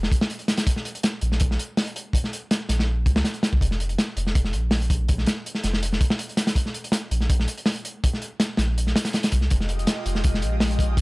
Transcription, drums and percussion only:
0.03 snare medium
0.12 kick loud
0.12 closed hi-hat medium
0.21 snare loud
0.30 closed hi-hat medium
0.39 closed hi-hat soft
0.48 snare loud
0.48 closed hi-hat medium
0.57 snare loud
0.57 closed hi-hat medium
0.67 kick loud
0.67 closed hi-hat medium
0.76 snare soft
0.85 closed hi-hat medium
0.95 closed hi-hat soft
1.03 snare loud
1.03 closed hi-hat loud
1.21 closed hi-hat medium
1.32 snare soft
1.40 kick loud
1.40 closed hi-hat medium
1.51 snare medium
1.59 closed hi-hat medium
1.77 snare loud
1.77 open hi-hat medium
1.87 closed hi-hat soft
1.96 closed hi-hat medium
2.13 kick loud
2.13 closed hi-hat medium
2.24 snare soft
2.33 closed hi-hat medium
2.51 snare loud
2.51 closed hi-hat medium
2.69 snare soft
2.69 closed hi-hat medium
2.79 snare medium
3.06 kick loud
3.06 closed hi-hat medium
3.16 snare loud
3.24 snare loud
3.24 closed hi-hat medium
3.34 closed hi-hat soft
3.43 snare loud
3.43 closed hi-hat medium
3.53 kick loud
3.61 kick loud
3.61 closed hi-hat medium
3.71 snare soft
3.80 closed hi-hat medium
3.89 closed hi-hat soft
3.98 snare loud
3.98 closed hi-hat medium
4.17 closed hi-hat medium
4.27 snare soft
4.35 kick loud
4.35 closed hi-hat medium
4.45 snare medium
4.53 closed hi-hat medium
4.71 snare loud
4.71 open hi-hat medium
4.82 closed hi-hat soft
4.90 kick loud
4.90 closed hi-hat medium
5.08 kick loud
5.08 closed hi-hat medium
5.18 snare soft
5.26 snare loud
5.26 closed hi-hat medium
5.46 closed hi-hat medium
5.55 snare soft
5.63 snare soft
5.63 closed hi-hat medium
5.73 snare medium
5.83 closed hi-hat medium
5.93 snare medium
6.01 kick loud
6.01 closed hi-hat medium
6.10 snare loud
6.19 closed hi-hat loud
6.29 closed hi-hat soft
6.37 snare loud
6.37 closed hi-hat medium
6.47 snare loud
6.47 closed hi-hat medium
6.55 kick loud
6.55 closed hi-hat medium
6.66 snare soft
6.74 closed hi-hat medium
6.84 closed hi-hat soft
6.92 snare loud
6.92 closed hi-hat loud
7.11 closed hi-hat medium
7.21 snare soft
7.30 kick loud
7.30 closed hi-hat medium
7.40 snare medium
7.48 closed hi-hat medium
7.58 closed hi-hat soft
7.66 snare loud
7.66 open hi-hat medium
7.76 closed hi-hat soft
7.85 closed hi-hat medium
8.04 kick loud
8.04 closed hi-hat medium
8.14 snare soft
8.22 closed hi-hat medium
8.40 snare loud
8.40 closed hi-hat medium
8.57 snare loud
8.57 closed hi-hat medium
8.78 closed hi-hat medium
8.87 snare soft
8.96 snare loud
8.96 closed hi-hat medium
9.05 snare loud
9.05 closed hi-hat medium
9.13 snare loud
9.13 closed hi-hat medium
9.23 snare loud
9.23 closed hi-hat medium
9.32 kick loud
9.32 closed hi-hat medium
9.41 snare soft
9.50 kick loud
9.50 closed hi-hat medium
9.60 snare soft
9.69 closed hi-hat medium
9.79 closed hi-hat soft
9.87 snare loud
9.87 closed hi-hat medium
10.06 closed hi-hat medium
10.15 snare soft
10.24 kick loud
10.24 closed hi-hat medium
10.34 snare medium
10.42 closed hi-hat medium
10.60 snare loud
10.60 open hi-hat medium
10.71 closed hi-hat soft
10.79 kick loud
10.79 closed hi-hat medium
10.97 kick loud
10.97 closed hi-hat loud

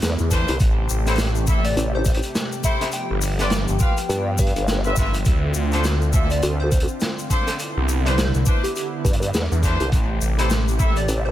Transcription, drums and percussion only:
0.02 snare loud
0.02 closed hi-hat medium
0.02 shaker medium
0.04 closed hi-hat soft
0.18 shaker soft
0.31 kick medium
0.31 snare soft
0.31 closed hi-hat medium
0.31 shaker loud
0.48 closed hi-hat medium
0.48 shaker soft
0.60 kick loud
0.60 closed hi-hat medium
0.60 shaker medium
0.89 shaker loud
1.06 snare medium
1.06 closed hi-hat medium
1.06 shaker soft
1.15 snare loud
1.15 closed hi-hat medium
1.15 shaker medium
1.19 closed hi-hat medium
1.25 closed hi-hat soft
1.35 shaker soft
1.47 kick loud
1.47 shaker loud
1.64 closed hi-hat medium
1.64 shaker soft
1.66 closed hi-hat medium
1.70 closed hi-hat soft
1.72 closed hi-hat soft
1.74 closed hi-hat soft
1.77 closed hi-hat medium
1.77 shaker medium
2.05 kick loud
2.05 closed hi-hat medium
2.05 shaker loud
2.14 closed hi-hat medium
2.23 closed hi-hat medium
2.23 shaker soft
2.35 snare loud
2.35 closed hi-hat medium
2.35 shaker medium
2.52 shaker soft
2.63 kick medium
2.63 closed hi-hat medium
2.63 shaker loud
2.81 snare medium
2.81 closed hi-hat medium
2.81 shaker soft
2.92 closed hi-hat medium
2.92 shaker medium
3.21 closed hi-hat soft
3.21 shaker medium
3.27 closed hi-hat soft
3.31 closed hi-hat soft
3.36 snare medium
3.36 closed hi-hat soft
3.39 closed hi-hat medium
3.39 closed hi-hat soft
3.39 shaker soft
3.43 closed hi-hat soft
3.46 closed hi-hat soft
3.49 snare loud
3.49 closed hi-hat soft
3.49 closed hi-hat medium
3.49 shaker medium
3.68 shaker soft
3.79 kick loud
3.79 shaker medium
3.97 closed hi-hat medium
3.97 shaker soft
4.09 closed hi-hat medium
4.09 shaker soft
4.38 kick loud
4.38 closed hi-hat medium
4.38 shaker loud
4.46 closed hi-hat medium
4.56 closed hi-hat medium
4.56 shaker soft
4.68 snare loud
4.68 closed hi-hat medium
4.68 shaker medium
4.84 shaker soft
4.96 kick medium
4.96 snare soft
4.96 shaker loud
5.14 closed hi-hat medium
5.14 shaker soft
5.25 kick loud
5.25 closed hi-hat medium
5.25 shaker medium
5.54 shaker medium
5.72 snare soft
5.72 closed hi-hat medium
5.72 shaker soft
5.84 snare loud
5.84 closed hi-hat medium
5.84 shaker medium
6.02 shaker soft
6.13 kick loud
6.13 shaker loud
6.30 closed hi-hat medium
6.30 shaker soft
6.42 closed hi-hat medium
6.42 shaker medium
6.72 kick loud
6.72 closed hi-hat medium
6.72 shaker medium
6.80 closed hi-hat medium
6.88 shaker soft
7.00 snare loud
7.00 closed hi-hat medium
7.00 shaker medium
7.19 shaker soft
7.30 kick medium
7.30 closed hi-hat soft
7.30 shaker medium
7.47 snare medium
7.47 closed hi-hat medium
7.47 shaker soft
7.59 closed hi-hat medium
7.59 shaker soft
7.89 shaker loud
8.05 snare medium
8.05 closed hi-hat medium
8.05 shaker soft
8.18 snare loud
8.18 closed hi-hat medium
8.18 shaker medium
8.34 shaker soft
8.46 kick loud
8.46 shaker medium
8.64 closed hi-hat medium
8.64 shaker soft
8.76 closed hi-hat medium
8.76 shaker medium
9.05 kick loud
9.05 closed hi-hat medium
9.05 shaker loud
9.13 closed hi-hat medium
9.22 closed hi-hat medium
9.22 shaker soft
9.34 snare loud
9.34 closed hi-hat medium
9.34 shaker medium
9.52 shaker soft
9.63 kick medium
9.63 snare soft
9.63 closed hi-hat soft
9.63 shaker medium
9.80 closed hi-hat medium
9.80 shaker soft
9.92 kick loud
9.92 closed hi-hat medium
9.92 shaker medium
10.21 shaker medium
10.38 snare medium
10.38 closed hi-hat medium
10.38 shaker soft
10.50 snare loud
10.50 closed hi-hat medium
10.50 shaker medium
10.68 shaker soft
10.79 kick loud
10.79 shaker medium
10.96 closed hi-hat medium
10.96 shaker soft
11.08 closed hi-hat medium
11.08 shaker medium

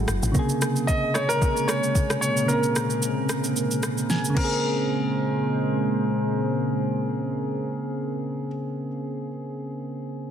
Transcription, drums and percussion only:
0.08 cross-stick loud
0.08 shaker loud
0.23 shaker medium
0.35 kick loud
0.35 shaker medium
0.49 shaker soft
0.62 cross-stick medium
0.62 shaker medium
0.76 shaker soft
0.88 kick medium
0.88 shaker medium
1.15 cross-stick loud
1.15 shaker loud
1.30 shaker medium
1.42 kick loud
1.42 shaker medium
1.57 shaker soft
1.69 cross-stick loud
1.69 shaker medium
1.83 shaker soft
1.95 kick medium
1.95 shaker medium
2.10 cross-stick medium
2.10 shaker medium
2.23 shaker loud
2.37 shaker medium
2.49 shaker medium
2.63 shaker soft
2.76 cross-stick medium
2.76 shaker medium
2.90 shaker soft
3.03 shaker medium
3.29 cross-stick loud
3.29 shaker loud
3.44 shaker medium
3.56 shaker medium
3.71 shaker medium
3.83 cross-stick loud
3.83 shaker medium
3.98 shaker soft
4.10 snare medium
4.10 shaker medium
4.25 shaker medium
4.37 kick loud
4.37 crash medium

